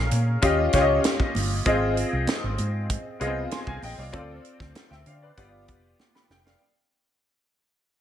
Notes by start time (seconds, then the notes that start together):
Already playing: C#4 G#4 A#4 F5
0.11 A#2, closed hi-hat, muted conga
0.42 D#2 C#4 F4 G4 D#5, kick, closed hi-hat
0.73 C#2 C#4 F4 G4 C#5, kick, snare, closed hi-hat
0.81 D#5
1.04 snare, closed hi-hat, high conga
1.20 kick
1.35 G1, open hi-hat, high conga
1.65 G#1 C4 F4 G#4 D#5, kick, closed hi-hat, muted conga
1.97 closed hi-hat
2.13 C2
2.27 snare, closed hi-hat, high conga
2.44 G#1
2.58 G#2, closed hi-hat, muted conga
2.90 kick, closed hi-hat
3.20 C2 B3 F4 G#4 D#5, closed hi-hat
3.26 C4
3.51 G#5 C6, snare, closed hi-hat, high conga
3.67 C2 F5 G#5, kick
3.82 A#1 D#5 G5, open hi-hat, high conga
3.98 C2 D5 F5
4.13 D2 C4 F4 A4 D5, kick, closed hi-hat, muted conga
4.45 closed hi-hat
4.60 D2, kick, snare
4.75 snare, closed hi-hat, high conga
4.91 D2 E5 G5, snare
5.06 D3 D5 F5, closed hi-hat, muted conga
5.22 B4 D5
5.37 G1 B3 F4 G4 D5, kick, closed hi-hat
5.68 F1, kick, closed hi-hat
6.00 snare, high conga
6.15 G5 B5, snare
6.30 F1 G5, snare, high conga
6.46 D5 F5, snare